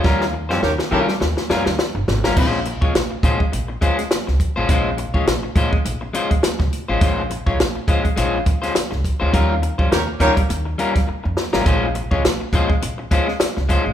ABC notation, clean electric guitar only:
X:1
M:4/4
L:1/16
Q:"Swing 16ths" 1/4=103
K:Bbdor
V:1 name="Clean electric guitar"
[G,DFB] z2 [G,DFc] z2 [G,DFB] z3 [G,DFB] z4 [G,DFB] | [A,DFc] z2 [A,DFd] z2 [A,DFc] z3 [A,DFc] z4 [A,DFc] | [A,DFc] z2 [A,DFd] z2 [A,DFc] z3 [A,DFc] z4 [A,DFc] | [A,DFc] z2 [A,DFd] z2 [A,DFc] z [A,DFc] z2 [A,DFc] z3 [A,DFc] |
[G,DFB] z2 [G,DFc] z2 [G,DFB] z3 [G,DFB] z4 [G,DFB] | [A,DFc] z2 [A,DFd] z2 [A,DFc] z3 [A,DFc] z3 [A,DFc] z |]